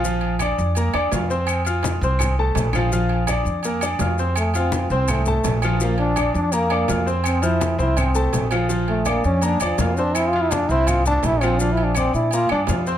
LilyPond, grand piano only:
\new Staff \with { instrumentName = "Grand piano" } { \time 4/4 \key f \major \tempo 4 = 166 <f f' f''>4 <d' d'' d'''>4 <bes bes' bes''>8 <d' d'' d'''>8 <f' f'' f'''>8 <c' c'' c'''>8~ | <c' c'' c'''>8 <f' f'' f'''>4 <c' c'' c'''>4 <a a' a''>4 <f f' f''>8 | <f f' f''>4 <d' d'' d'''>4 <bes bes' bes''>8 <d' d'' d'''>8 <f' f'' f'''>8 <c' c'' c'''>8 | r8 <f' f'' f'''>4 <c' c'' c'''>4 <a a' a''>4 <f f' f''>8 |
<f f' f''>4 <d' d'' d'''>4 <bes bes' bes''>8 <d' d'' d'''>8 <f' f'' f'''>8 <c' c'' c'''>8~ | <c' c'' c'''>8 <f c'' f'''>4 <c' c'' c'''>4 <a a' a''>4 <f f' f''>8 | <f f' f''>4 <d' d'' d'''>4 <bes bes' bes''>8 <d' d'' d'''>8 <f' f'' f'''>8 <c' c'' c'''>8~ | <c' c'' c'''>8 <f' f'' f'''>4 <c' c'' c'''>4 <a a' a''>4 <f f' f''>8 |
<f f' f''>4 <d' d'' d'''>4 <bes bes' bes''>8 <d' d'' d'''>8 <f' f'' f'''>8 <c' c'' c'''>8 | }